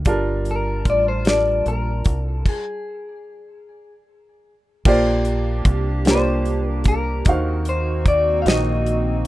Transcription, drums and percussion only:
0.05 kick, closed hi-hat
0.45 closed hi-hat
0.85 kick, closed hi-hat
1.25 snare, closed hi-hat
1.66 closed hi-hat
2.04 kick, closed hi-hat
2.46 kick, crash
4.85 kick, crash
5.25 closed hi-hat
5.65 kick, closed hi-hat
6.05 snare, closed hi-hat
6.45 closed hi-hat
6.84 kick, closed hi-hat
7.25 kick, closed hi-hat
7.65 closed hi-hat
8.06 kick, closed hi-hat
8.46 snare, closed hi-hat
8.86 closed hi-hat

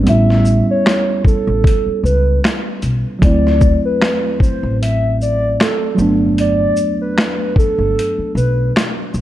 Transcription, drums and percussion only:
0.07 closed hi-hat
0.30 snare
0.45 shaker
0.86 finger snap, snare, closed hi-hat
1.25 kick, shaker
1.64 kick, closed hi-hat
2.06 shaker
2.44 finger snap, snare, closed hi-hat
2.82 closed hi-hat, shaker
3.22 kick, closed hi-hat
3.47 snare
3.61 kick, shaker
4.02 finger snap, snare, closed hi-hat
4.40 kick, shaker
4.83 closed hi-hat
5.21 shaker
5.60 finger snap, snare, closed hi-hat
5.98 shaker
6.38 closed hi-hat
6.77 shaker
7.18 finger snap, snare, closed hi-hat
7.56 kick, shaker
7.99 closed hi-hat
8.37 shaker
8.76 finger snap, snare, closed hi-hat
9.14 shaker

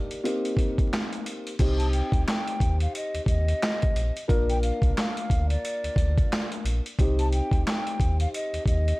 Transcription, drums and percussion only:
0.11 closed hi-hat
0.25 closed hi-hat
0.45 closed hi-hat
0.57 kick, closed hi-hat
0.78 kick, closed hi-hat
0.93 snare, clap, closed hi-hat
1.13 closed hi-hat
1.26 closed hi-hat
1.47 closed hi-hat
1.59 kick, closed hi-hat, crash
1.80 closed hi-hat
1.93 closed hi-hat
2.12 kick, closed hi-hat
2.28 snare, clap, closed hi-hat
2.47 closed hi-hat
2.60 kick, closed hi-hat
2.80 closed hi-hat
2.95 closed hi-hat
3.15 closed hi-hat
3.26 kick, closed hi-hat
3.48 closed hi-hat
3.62 snare, clap, closed hi-hat
3.82 kick, closed hi-hat
3.96 closed hi-hat
4.17 closed hi-hat
4.29 kick, closed hi-hat
4.50 closed hi-hat
4.63 closed hi-hat
4.82 kick, closed hi-hat
4.97 snare, clap, closed hi-hat
5.17 closed hi-hat
5.30 kick, closed hi-hat
5.50 closed hi-hat
5.65 closed hi-hat
5.84 closed hi-hat
5.96 kick, closed hi-hat
6.18 kick, closed hi-hat
6.32 snare, clap, closed hi-hat
6.52 closed hi-hat
6.66 closed hi-hat
6.86 closed hi-hat
6.99 kick, closed hi-hat
7.19 closed hi-hat
7.32 closed hi-hat
7.51 kick, closed hi-hat
7.67 snare, clap, closed hi-hat
7.87 closed hi-hat
8.00 kick, closed hi-hat
8.20 closed hi-hat
8.34 closed hi-hat
8.54 closed hi-hat
8.66 kick, closed hi-hat
8.88 closed hi-hat

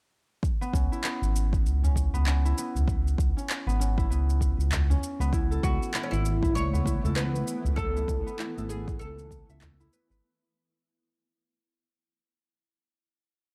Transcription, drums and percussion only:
0.43 kick, shaker
0.62 shaker
0.74 kick, shaker
0.93 shaker
1.04 clap, shaker
1.23 shaker
1.36 shaker
1.53 kick, shaker
1.66 shaker
1.83 udu, shaker
1.96 kick, shaker
2.13 udu, shaker
2.26 clap, shaker
2.46 shaker
2.58 shaker
2.75 udu, shaker
2.88 kick, shaker
3.08 shaker
3.18 kick, shaker
3.38 shaker
3.50 clap, shaker
3.69 shaker
3.81 shaker
3.98 kick, shaker
4.12 shaker
4.30 shaker
4.41 kick, shaker
4.60 shaker
4.71 clap, udu, shaker
4.90 udu, shaker
5.03 shaker
5.21 shaker
5.33 kick, shaker
5.52 shaker
5.63 kick, shaker
5.83 shaker
5.94 clap, shaker
6.13 shaker
6.25 shaker
6.43 kick, shaker
6.57 shaker
6.73 udu, shaker
6.86 kick, shaker
7.04 udu, shaker
7.16 clap, shaker
7.36 shaker
7.48 shaker
7.66 udu, shaker
7.77 kick, shaker
7.97 shaker
8.08 kick, shaker
8.28 shaker
8.39 clap, shaker
8.58 shaker
8.70 shaker
8.88 kick, shaker
9.01 shaker
9.19 shaker
9.31 kick, shaker
9.50 shaker
9.61 clap, udu, shaker
9.80 udu, shaker
9.93 shaker
10.12 shaker

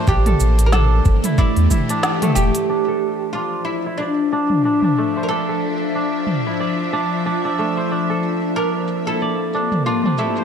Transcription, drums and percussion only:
0.07 kick, cabasa
0.26 mid tom, open hi-hat
0.40 cabasa
0.59 open hi-hat, cabasa
0.72 snare, mid tom, cabasa
1.05 kick, cabasa
1.24 mid tom, open hi-hat, cabasa
1.38 kick, cabasa
1.56 open hi-hat
1.71 kick, mid tom, cabasa
1.89 open hi-hat, cabasa
2.03 snare, cabasa
2.22 mid tom, open hi-hat
2.36 cabasa
2.55 open hi-hat, cabasa
3.01 cabasa
3.20 cabasa
3.34 cabasa
3.85 cabasa
4.31 cabasa
4.50 mid tom, cabasa
4.64 cabasa
4.82 mid tom
4.96 cabasa
5.15 cabasa
5.62 cabasa
5.80 cabasa
5.94 cabasa
6.27 mid tom, cabasa
6.45 cabasa
6.60 cabasa
6.92 cabasa
7.11 cabasa
7.25 cabasa
7.58 cabasa
7.77 cabasa
7.90 cabasa
8.23 cabasa
8.42 cabasa
8.55 cabasa
8.88 cabasa
9.07 cabasa
9.20 cabasa
9.53 cabasa
9.72 mid tom, cabasa
9.86 cabasa
10.04 mid tom
10.18 cabasa
10.36 cabasa

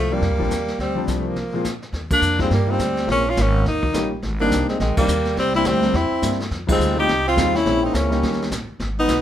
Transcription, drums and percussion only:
0.22 brush sweep, kick, snare
0.51 kick, snare, hi-hat pedal
0.68 snare
0.79 brush sweep, kick, snare
1.08 kick, snare, hi-hat pedal
1.36 brush sweep, kick, snare
1.64 kick, snare, hi-hat pedal
1.82 snare
1.93 brush sweep, kick, snare
2.11 kick, crash
2.22 hi-hat pedal
2.39 kick, snare
2.50 brush sweep, kick, snare
2.79 kick, snare, hi-hat pedal
2.97 snare
3.08 brush sweep, kick, snare
3.37 kick, snare, hi-hat pedal
3.65 brush sweep, kick, snare
3.83 kick
3.94 kick, snare, hi-hat pedal
4.23 brush sweep, kick, snare
4.51 kick, snare, hi-hat pedal
4.69 snare
4.80 brush sweep, kick, snare
4.97 kick, crash
5.08 hi-hat pedal
5.25 snare
5.37 brush sweep, kick, snare
5.54 snare
5.65 kick, snare, hi-hat pedal
5.82 snare
5.94 brush sweep, kick, snare
6.22 kick, snare, hi-hat pedal
6.32 snare
6.40 snare
6.42 snare
6.51 brush sweep, kick, snare
6.69 kick, crash
6.80 hi-hat pedal
7.08 brush sweep, kick, snare
7.37 kick, snare, hi-hat pedal
7.55 snare
7.66 brush sweep, kick, snare
7.94 kick, snare, hi-hat pedal
8.12 snare
8.23 brush sweep, kick, snare
8.32 snare
8.42 snare
8.51 kick, snare, hi-hat pedal
8.80 brush sweep, kick, snare
9.08 kick, snare, hi-hat pedal

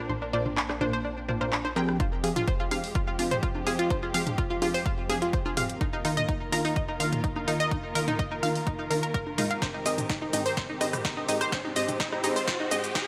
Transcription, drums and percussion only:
0.10 high conga
0.46 mid tom, high conga
0.57 clap
0.69 cross-stick, clap
0.81 mid tom, high conga
1.29 mid tom, high conga
1.53 clap
1.65 high conga
1.89 cross-stick
2.00 kick, closed hi-hat, high conga
2.24 open hi-hat
2.36 closed hi-hat, mid tom, high conga
2.48 kick, closed hi-hat
2.71 open hi-hat, high conga
2.84 open hi-hat
2.95 kick, closed hi-hat
3.19 open hi-hat, high conga
3.31 closed hi-hat, mid tom
3.43 kick, closed hi-hat
3.55 high conga
3.67 open hi-hat
3.79 closed hi-hat
3.90 kick, closed hi-hat, high conga
4.14 open hi-hat
4.27 closed hi-hat, mid tom, high conga
4.38 kick, closed hi-hat
4.62 open hi-hat, high conga
4.74 open hi-hat
4.86 kick, closed hi-hat
5.09 open hi-hat, high conga
5.22 closed hi-hat
5.33 kick, closed hi-hat
5.46 high conga
5.57 open hi-hat, mid tom
5.70 closed hi-hat
5.81 kick, closed hi-hat, high conga
6.05 open hi-hat
6.17 closed hi-hat, mid tom, high conga
6.29 kick, closed hi-hat
6.52 open hi-hat, high conga
6.65 open hi-hat
6.76 kick, closed hi-hat
7.00 open hi-hat, high conga
7.12 closed hi-hat, mid tom
7.24 kick, closed hi-hat
7.36 high conga
7.48 open hi-hat
7.60 closed hi-hat
7.71 kick, closed hi-hat, high conga
7.95 open hi-hat
8.08 closed hi-hat, mid tom, high conga
8.19 kick, closed hi-hat
8.43 open hi-hat, high conga
8.55 open hi-hat
8.67 kick, closed hi-hat
8.90 open hi-hat, high conga
9.03 closed hi-hat
9.14 kick, closed hi-hat
9.27 high conga
9.38 open hi-hat, mid tom
9.51 closed hi-hat
9.62 kick, snare, closed hi-hat, high conga, shaker
9.86 open hi-hat, shaker
9.98 closed hi-hat, mid tom, high conga, shaker
10.10 kick, snare, closed hi-hat, shaker
10.33 open hi-hat, high conga, shaker
10.46 open hi-hat, shaker
10.57 kick, snare, closed hi-hat, shaker
10.81 cross-stick, open hi-hat, high conga, shaker
10.93 cross-stick, closed hi-hat, mid tom, shaker
11.05 kick, snare, closed hi-hat, shaker
11.17 high conga
11.29 open hi-hat, shaker
11.41 cross-stick, closed hi-hat, shaker
11.52 kick, snare, closed hi-hat, high conga, shaker
11.76 open hi-hat, shaker
11.89 closed hi-hat, mid tom, high conga, shaker
12.00 kick, snare, closed hi-hat, shaker
12.12 cross-stick
12.24 open hi-hat, high conga, shaker
12.36 open hi-hat, shaker
12.48 kick, snare, closed hi-hat, shaker
12.71 open hi-hat, high conga, shaker
12.84 closed hi-hat, shaker
12.95 kick, snare, closed hi-hat, shaker

